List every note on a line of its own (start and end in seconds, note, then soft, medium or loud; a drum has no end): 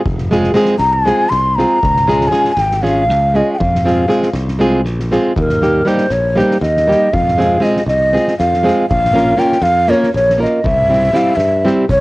0.05 0.50 F1 medium
0.05 kick medium
0.18 snare soft
0.31 0.51 G#3 medium
0.31 0.52 C4 medium
0.31 0.51 F4 medium
0.31 0.52 G#4 medium
0.31 snare soft
0.44 snare soft
0.54 0.74 G#3 loud
0.54 0.75 C4 medium
0.54 0.75 F4 medium
0.54 0.75 G#4 loud
0.54 snare soft
0.66 snare soft
0.78 1.11 C2 medium
0.78 0.94 A#5 loud
0.78 snare soft
0.93 1.31 G#5 loud
1.05 1.26 G#3 medium
1.05 1.26 C4 medium
1.05 1.27 F4 medium
1.05 1.27 G#4 medium
1.05 snare soft
1.29 1.63 C2 medium
1.29 1.57 C6 loud
1.29 snare soft
1.56 1.78 G#3 medium
1.56 1.78 C4 medium
1.56 1.79 F4 medium
1.56 1.79 G#4 medium
1.56 2.29 A#5 loud
1.56 snare soft
1.83 2.28 C#2 loud
1.83 kick loud
1.96 snare soft
2.07 2.28 G#3 medium
2.07 2.28 C#4 medium
2.07 2.28 F4 medium
2.07 2.28 G#4 medium
2.07 snare soft
2.21 snare soft
2.27 2.51 G#3 medium
2.27 2.51 C#4 medium
2.27 2.54 G#5 medium
2.32 2.52 F4 medium
2.32 2.52 G#4 medium
2.32 snare soft
2.45 snare soft
2.52 2.76 G5 loud
2.57 3.10 G#1 loud
2.57 snare soft
2.71 snare soft
2.76 2.84 G5 medium
2.82 3.03 G#3 medium
2.82 3.03 C#4 medium
2.82 3.04 F4 medium
2.82 3.04 G#4 medium
2.82 3.37 F5 loud
2.82 snare soft
3.10 3.41 C#2 medium
3.10 snare soft
3.34 3.55 G#3 medium
3.34 3.55 C#4 medium
3.34 3.55 F4 medium
3.34 3.56 G#4 medium
3.34 3.53 D#5 medium
3.53 3.60 G5 medium
3.59 4.04 F2 loud
3.59 4.33 F5 medium
3.59 kick medium
3.75 snare soft
3.84 4.05 G#3 medium
3.84 4.05 C4 medium
3.84 4.05 F4 medium
3.84 4.05 G#4 medium
3.84 snare soft
4.08 4.28 G#3 medium
4.08 4.28 C4 medium
4.08 4.29 F4 medium
4.08 4.29 G#4 loud
4.08 snare soft
4.23 snare soft
4.33 4.85 C2 loud
4.33 snare soft
4.48 snare soft
4.59 4.80 G#3 medium
4.59 4.80 C4 medium
4.59 4.80 F4 medium
4.59 4.81 G#4 medium
4.85 5.17 A#1 medium
4.85 snare soft
5.00 snare soft
5.11 5.32 G#3 medium
5.11 5.32 C4 medium
5.11 5.32 F4 medium
5.11 5.32 G#4 medium
5.11 snare soft
5.37 5.81 D#2 loud
5.37 5.89 A#4 medium
5.37 kick medium
5.49 snare soft
5.61 5.81 G3 medium
5.61 5.81 A#3 medium
5.61 5.82 D#4 medium
5.61 5.82 G4 medium
5.61 snare soft
5.85 6.05 G3 medium
5.85 6.05 A#3 medium
5.85 6.06 D#4 medium
5.85 6.06 G4 medium
5.85 6.13 C5 medium
5.85 snare soft
5.98 snare soft
6.10 6.41 A#1 medium
6.10 6.40 C#5 loud
6.10 snare soft
6.35 6.56 G3 medium
6.35 6.56 A#3 medium
6.35 6.57 D#4 medium
6.35 6.57 G4 medium
6.35 6.60 C5 medium
6.35 snare soft
6.51 snare soft
6.61 6.93 D#2 loud
6.61 7.15 D#5 loud
6.61 snare soft
6.77 snare soft
6.87 7.08 G3 medium
6.87 7.08 A#3 medium
6.87 7.08 D#4 medium
6.87 7.09 G4 medium
6.87 snare soft
7.13 7.57 F2 medium
7.13 7.65 F5 loud
7.13 kick loud
7.28 snare soft
7.38 7.58 G#3 medium
7.38 7.58 C4 medium
7.38 7.58 F4 medium
7.38 7.59 G#4 medium
7.38 snare soft
7.60 7.81 G#3 medium
7.60 7.81 C4 medium
7.60 7.81 F4 medium
7.60 7.81 G#4 medium
7.60 7.87 D#5 medium
7.60 snare soft
7.77 snare soft
7.86 8.17 C2 medium
7.86 8.35 D#5 loud
7.86 snare soft
8.13 8.33 G#3 medium
8.13 8.33 C4 medium
8.13 8.33 F4 medium
8.13 8.33 G#4 medium
8.13 snare soft
8.27 snare soft
8.39 8.70 F2 medium
8.39 8.86 F5 loud
8.39 snare soft
8.54 snare soft
8.63 8.84 G#3 medium
8.63 8.84 C4 medium
8.63 8.84 F4 medium
8.63 8.85 G#4 medium
8.67 snare soft
8.89 9.34 A#1 loud
8.89 9.40 F5 loud
8.89 kick medium
9.05 snare soft
9.13 9.33 A#3 medium
9.13 9.34 C#4 medium
9.13 9.34 F4 medium
9.13 9.34 A#4 medium
9.13 snare soft
9.36 9.56 A#3 medium
9.36 9.57 C#4 medium
9.36 9.57 F4 medium
9.36 9.57 A#4 medium
9.36 9.64 G5 loud
9.36 snare soft
9.52 snare soft
9.61 9.92 F2 loud
9.61 9.91 F5 loud
9.61 snare soft
9.88 10.08 A#3 medium
9.88 10.08 C#4 medium
9.88 10.09 F4 medium
9.88 10.09 A#4 medium
9.88 10.13 C#5 loud
9.88 snare soft
10.03 snare soft
10.14 10.45 A#1 medium
10.14 10.40 C#5 loud
10.14 snare soft
10.30 snare soft
10.38 10.59 A#3 medium
10.38 10.59 C#4 medium
10.38 10.60 F4 medium
10.38 10.60 A#4 medium
10.42 10.67 D#5 medium
10.42 snare soft
10.64 11.08 C2 loud
10.64 11.18 E5 loud
10.64 kick medium
10.89 11.09 G3 medium
10.89 11.09 C4 medium
10.89 11.09 E4 medium
10.89 11.10 G4 medium
10.89 snare soft
11.03 snare soft
11.13 11.32 G3 medium
11.13 11.33 C4 medium
11.13 11.33 E4 medium
11.13 11.33 G4 medium
11.13 11.37 F5 loud
11.13 snare soft
11.36 11.68 G2 medium
11.36 11.64 E5 medium
11.36 snare soft
11.65 11.84 G3 medium
11.65 11.84 C4 medium
11.65 11.84 E4 medium
11.65 11.85 G4 medium
11.65 snare soft
11.89 12.00 C2 medium
11.89 12.00 C#5 loud
11.89 kick medium
11.89 snare soft